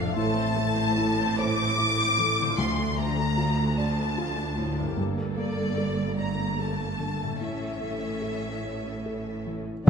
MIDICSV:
0, 0, Header, 1, 9, 480
1, 0, Start_track
1, 0, Tempo, 803213
1, 95, Time_signature, 6, 3, 24, 8
1, 3456, Tempo, 818554
1, 5869, End_track
2, 0, Start_track
2, 0, Title_t, "Violin section"
2, 0, Program_c, 0, 48
2, 0, Note_on_c, 0, 77, 86
2, 95, Note_on_c, 0, 81, 95
2, 96, Note_off_c, 0, 77, 0
2, 813, Note_off_c, 0, 81, 0
2, 829, Note_on_c, 0, 86, 109
2, 1543, Note_on_c, 0, 84, 82
2, 1545, Note_off_c, 0, 86, 0
2, 1780, Note_on_c, 0, 82, 87
2, 1782, Note_off_c, 0, 84, 0
2, 2248, Note_off_c, 0, 82, 0
2, 2261, Note_on_c, 0, 81, 83
2, 2974, Note_off_c, 0, 81, 0
2, 3210, Note_on_c, 0, 74, 68
2, 3668, Note_off_c, 0, 74, 0
2, 3695, Note_on_c, 0, 82, 71
2, 3928, Note_on_c, 0, 81, 61
2, 3933, Note_off_c, 0, 82, 0
2, 4410, Note_off_c, 0, 81, 0
2, 4413, Note_on_c, 0, 76, 63
2, 5594, Note_off_c, 0, 76, 0
2, 5869, End_track
3, 0, Start_track
3, 0, Title_t, "Violin section"
3, 0, Program_c, 1, 48
3, 0, Note_on_c, 1, 77, 102
3, 97, Note_off_c, 1, 77, 0
3, 98, Note_on_c, 1, 81, 115
3, 814, Note_off_c, 1, 81, 0
3, 831, Note_on_c, 1, 86, 127
3, 1543, Note_on_c, 1, 84, 93
3, 1546, Note_off_c, 1, 86, 0
3, 1782, Note_off_c, 1, 84, 0
3, 1782, Note_on_c, 1, 82, 106
3, 2258, Note_off_c, 1, 82, 0
3, 2262, Note_on_c, 1, 81, 90
3, 2960, Note_off_c, 1, 81, 0
3, 3210, Note_on_c, 1, 74, 84
3, 3668, Note_off_c, 1, 74, 0
3, 3697, Note_on_c, 1, 82, 81
3, 3931, Note_on_c, 1, 81, 77
3, 3934, Note_off_c, 1, 82, 0
3, 4411, Note_on_c, 1, 76, 71
3, 4412, Note_off_c, 1, 81, 0
3, 5617, Note_off_c, 1, 76, 0
3, 5869, End_track
4, 0, Start_track
4, 0, Title_t, "Viola section"
4, 0, Program_c, 2, 48
4, 0, Note_on_c, 2, 62, 71
4, 0, Note_on_c, 2, 69, 76
4, 82, Note_off_c, 2, 69, 0
4, 96, Note_off_c, 2, 62, 0
4, 97, Note_on_c, 2, 57, 68
4, 97, Note_on_c, 2, 69, 68
4, 207, Note_off_c, 2, 57, 0
4, 207, Note_off_c, 2, 69, 0
4, 211, Note_on_c, 2, 60, 58
4, 212, Note_on_c, 2, 72, 58
4, 334, Note_off_c, 2, 60, 0
4, 334, Note_off_c, 2, 72, 0
4, 336, Note_on_c, 2, 57, 64
4, 336, Note_on_c, 2, 69, 64
4, 458, Note_off_c, 2, 57, 0
4, 458, Note_off_c, 2, 69, 0
4, 459, Note_on_c, 2, 60, 59
4, 459, Note_on_c, 2, 72, 56
4, 582, Note_off_c, 2, 60, 0
4, 582, Note_off_c, 2, 72, 0
4, 582, Note_on_c, 2, 69, 61
4, 583, Note_on_c, 2, 57, 58
4, 697, Note_off_c, 2, 57, 0
4, 697, Note_off_c, 2, 69, 0
4, 706, Note_on_c, 2, 72, 58
4, 707, Note_on_c, 2, 60, 60
4, 827, Note_on_c, 2, 57, 67
4, 828, Note_off_c, 2, 60, 0
4, 828, Note_off_c, 2, 72, 0
4, 828, Note_on_c, 2, 69, 65
4, 948, Note_off_c, 2, 57, 0
4, 948, Note_off_c, 2, 69, 0
4, 948, Note_on_c, 2, 60, 60
4, 948, Note_on_c, 2, 72, 58
4, 1067, Note_on_c, 2, 57, 61
4, 1068, Note_off_c, 2, 60, 0
4, 1068, Note_off_c, 2, 72, 0
4, 1070, Note_on_c, 2, 69, 55
4, 1178, Note_off_c, 2, 57, 0
4, 1179, Note_off_c, 2, 69, 0
4, 1189, Note_on_c, 2, 60, 57
4, 1189, Note_on_c, 2, 72, 55
4, 1307, Note_off_c, 2, 60, 0
4, 1307, Note_off_c, 2, 72, 0
4, 1310, Note_on_c, 2, 57, 58
4, 1311, Note_on_c, 2, 69, 65
4, 1427, Note_off_c, 2, 57, 0
4, 1427, Note_off_c, 2, 69, 0
4, 1430, Note_on_c, 2, 60, 60
4, 1430, Note_on_c, 2, 72, 57
4, 1543, Note_on_c, 2, 53, 65
4, 1543, Note_on_c, 2, 65, 64
4, 1547, Note_off_c, 2, 60, 0
4, 1547, Note_off_c, 2, 72, 0
4, 1654, Note_off_c, 2, 65, 0
4, 1655, Note_off_c, 2, 53, 0
4, 1664, Note_on_c, 2, 57, 56
4, 1666, Note_on_c, 2, 62, 56
4, 1783, Note_off_c, 2, 57, 0
4, 1784, Note_off_c, 2, 62, 0
4, 1786, Note_on_c, 2, 53, 61
4, 1787, Note_on_c, 2, 65, 61
4, 1904, Note_off_c, 2, 53, 0
4, 1904, Note_off_c, 2, 65, 0
4, 1904, Note_on_c, 2, 62, 56
4, 1906, Note_on_c, 2, 57, 56
4, 2022, Note_off_c, 2, 62, 0
4, 2023, Note_off_c, 2, 57, 0
4, 2023, Note_on_c, 2, 65, 63
4, 2024, Note_on_c, 2, 53, 60
4, 2133, Note_off_c, 2, 53, 0
4, 2133, Note_off_c, 2, 65, 0
4, 2140, Note_on_c, 2, 62, 52
4, 2142, Note_on_c, 2, 57, 53
4, 2259, Note_off_c, 2, 62, 0
4, 2259, Note_on_c, 2, 65, 61
4, 2260, Note_off_c, 2, 57, 0
4, 2260, Note_on_c, 2, 53, 56
4, 2378, Note_off_c, 2, 53, 0
4, 2378, Note_off_c, 2, 65, 0
4, 2379, Note_on_c, 2, 57, 53
4, 2381, Note_on_c, 2, 62, 55
4, 2497, Note_off_c, 2, 57, 0
4, 2497, Note_on_c, 2, 65, 54
4, 2498, Note_off_c, 2, 62, 0
4, 2500, Note_on_c, 2, 53, 54
4, 2607, Note_off_c, 2, 65, 0
4, 2609, Note_off_c, 2, 53, 0
4, 2611, Note_on_c, 2, 62, 51
4, 2612, Note_on_c, 2, 57, 51
4, 2731, Note_on_c, 2, 53, 52
4, 2731, Note_on_c, 2, 65, 56
4, 2732, Note_off_c, 2, 57, 0
4, 2732, Note_off_c, 2, 62, 0
4, 2852, Note_off_c, 2, 53, 0
4, 2852, Note_off_c, 2, 65, 0
4, 2852, Note_on_c, 2, 62, 51
4, 2853, Note_on_c, 2, 57, 54
4, 2969, Note_on_c, 2, 58, 70
4, 2969, Note_on_c, 2, 69, 66
4, 2972, Note_off_c, 2, 62, 0
4, 2973, Note_off_c, 2, 57, 0
4, 3668, Note_off_c, 2, 58, 0
4, 3668, Note_off_c, 2, 69, 0
4, 3690, Note_on_c, 2, 57, 63
4, 3691, Note_on_c, 2, 58, 62
4, 4396, Note_off_c, 2, 57, 0
4, 4397, Note_off_c, 2, 58, 0
4, 4407, Note_on_c, 2, 69, 59
4, 4410, Note_on_c, 2, 61, 55
4, 5712, Note_off_c, 2, 69, 0
4, 5713, Note_off_c, 2, 61, 0
4, 5869, End_track
5, 0, Start_track
5, 0, Title_t, "Felt piano"
5, 0, Program_c, 3, 0
5, 0, Control_c, 3, 64, 127
5, 0, Note_on_c, 3, 41, 71
5, 0, Note_on_c, 3, 53, 50
5, 0, Note_on_c, 3, 57, 58
5, 0, Note_on_c, 3, 62, 58
5, 0, Note_on_c, 3, 69, 59
5, 73, Note_off_c, 3, 41, 0
5, 97, Note_on_c, 3, 45, 70
5, 98, Note_off_c, 3, 53, 0
5, 106, Control_c, 3, 64, 0
5, 108, Note_off_c, 3, 62, 0
5, 110, Note_off_c, 3, 57, 0
5, 110, Note_off_c, 3, 69, 0
5, 208, Control_c, 3, 64, 127
5, 336, Note_on_c, 3, 57, 57
5, 582, Note_on_c, 3, 64, 56
5, 730, Note_off_c, 3, 57, 0
5, 829, Note_on_c, 3, 72, 65
5, 973, Note_off_c, 3, 64, 0
5, 1066, Note_on_c, 3, 64, 59
5, 1212, Note_off_c, 3, 72, 0
5, 1307, Note_on_c, 3, 52, 54
5, 1447, Note_off_c, 3, 64, 0
5, 1521, Note_off_c, 3, 45, 0
5, 1541, Note_on_c, 3, 38, 70
5, 1544, Note_off_c, 3, 52, 0
5, 1555, Control_c, 3, 64, 0
5, 1650, Control_c, 3, 64, 127
5, 1782, Note_on_c, 3, 57, 55
5, 2015, Note_on_c, 3, 65, 52
5, 2163, Note_off_c, 3, 57, 0
5, 2255, Note_on_c, 3, 74, 54
5, 2398, Note_off_c, 3, 65, 0
5, 2497, Note_on_c, 3, 65, 53
5, 2637, Note_off_c, 3, 74, 0
5, 2733, Note_on_c, 3, 45, 48
5, 2877, Note_off_c, 3, 65, 0
5, 2947, Note_off_c, 3, 38, 0
5, 2972, Note_off_c, 3, 45, 0
5, 2972, Note_on_c, 3, 43, 65
5, 2983, Control_c, 3, 64, 0
5, 3079, Control_c, 3, 64, 127
5, 3211, Note_on_c, 3, 58, 48
5, 3452, Note_on_c, 3, 69, 43
5, 3597, Note_off_c, 3, 58, 0
5, 3696, Note_on_c, 3, 74, 49
5, 3834, Note_off_c, 3, 69, 0
5, 3930, Note_on_c, 3, 69, 45
5, 4077, Note_off_c, 3, 74, 0
5, 4169, Note_on_c, 3, 50, 37
5, 4316, Note_off_c, 3, 69, 0
5, 4388, Note_off_c, 3, 43, 0
5, 4409, Note_on_c, 3, 45, 49
5, 4411, Note_off_c, 3, 50, 0
5, 4425, Control_c, 3, 64, 0
5, 4519, Control_c, 3, 64, 127
5, 4647, Note_on_c, 3, 57, 35
5, 4884, Note_on_c, 3, 69, 36
5, 5032, Note_off_c, 3, 57, 0
5, 5132, Note_on_c, 3, 73, 41
5, 5274, Note_off_c, 3, 69, 0
5, 5377, Note_on_c, 3, 69, 38
5, 5521, Note_off_c, 3, 73, 0
5, 5614, Note_on_c, 3, 52, 35
5, 5763, Note_off_c, 3, 69, 0
5, 5831, Note_off_c, 3, 45, 0
5, 5855, Note_off_c, 3, 52, 0
5, 5867, Control_c, 3, 64, 0
5, 5869, End_track
6, 0, Start_track
6, 0, Title_t, "Harp"
6, 0, Program_c, 4, 46
6, 0, Note_on_c, 4, 41, 61
6, 0, Note_on_c, 4, 45, 62
6, 0, Note_on_c, 4, 62, 52
6, 17, Note_on_c, 4, 57, 55
6, 45, Note_on_c, 4, 64, 56
6, 61, Note_off_c, 4, 41, 0
6, 72, Note_on_c, 4, 72, 52
6, 89, Note_off_c, 4, 62, 0
6, 1436, Note_on_c, 4, 50, 62
6, 1456, Note_off_c, 4, 57, 0
6, 1463, Note_on_c, 4, 57, 50
6, 1491, Note_on_c, 4, 65, 53
6, 1511, Note_off_c, 4, 45, 0
6, 1516, Note_on_c, 4, 74, 52
6, 1538, Note_off_c, 4, 64, 0
6, 1551, Note_off_c, 4, 72, 0
6, 2860, Note_on_c, 4, 43, 61
6, 2888, Note_on_c, 4, 58, 48
6, 2914, Note_on_c, 4, 67, 48
6, 2933, Note_off_c, 4, 74, 0
6, 2938, Note_off_c, 4, 50, 0
6, 2940, Note_on_c, 4, 74, 45
6, 2965, Note_off_c, 4, 65, 0
6, 3788, Note_off_c, 4, 57, 0
6, 4300, Note_on_c, 4, 45, 45
6, 4328, Note_on_c, 4, 57, 38
6, 4354, Note_on_c, 4, 69, 38
6, 4376, Note_off_c, 4, 43, 0
6, 4380, Note_on_c, 4, 73, 40
6, 4390, Note_off_c, 4, 58, 0
6, 4415, Note_off_c, 4, 74, 0
6, 5211, Note_off_c, 4, 67, 0
6, 5819, Note_off_c, 4, 45, 0
6, 5859, Note_off_c, 4, 73, 0
6, 5869, Note_off_c, 4, 57, 0
6, 5869, Note_off_c, 4, 69, 0
6, 5869, End_track
7, 0, Start_track
7, 0, Title_t, "French horn section"
7, 0, Program_c, 5, 60
7, 5847, Note_on_c, 5, 50, 93
7, 5869, Note_off_c, 5, 50, 0
7, 5869, End_track
8, 0, Start_track
8, 0, Title_t, "Cello section"
8, 0, Program_c, 6, 48
8, 0, Note_on_c, 6, 41, 79
8, 75, Note_off_c, 6, 41, 0
8, 98, Note_on_c, 6, 45, 78
8, 1522, Note_off_c, 6, 45, 0
8, 1546, Note_on_c, 6, 38, 78
8, 2950, Note_off_c, 6, 38, 0
8, 2973, Note_on_c, 6, 43, 65
8, 4389, Note_off_c, 6, 43, 0
8, 4410, Note_on_c, 6, 45, 50
8, 5713, Note_off_c, 6, 45, 0
8, 5869, End_track
9, 0, Start_track
9, 0, Title_t, "Double bass section"
9, 0, Program_c, 7, 48
9, 0, Note_on_c, 7, 29, 73
9, 72, Note_off_c, 7, 29, 0
9, 100, Note_on_c, 7, 33, 75
9, 1522, Note_off_c, 7, 33, 0
9, 1543, Note_on_c, 7, 38, 73
9, 2948, Note_off_c, 7, 38, 0
9, 2967, Note_on_c, 7, 31, 64
9, 4386, Note_off_c, 7, 31, 0
9, 4408, Note_on_c, 7, 33, 51
9, 5712, Note_off_c, 7, 33, 0
9, 5869, End_track
0, 0, End_of_file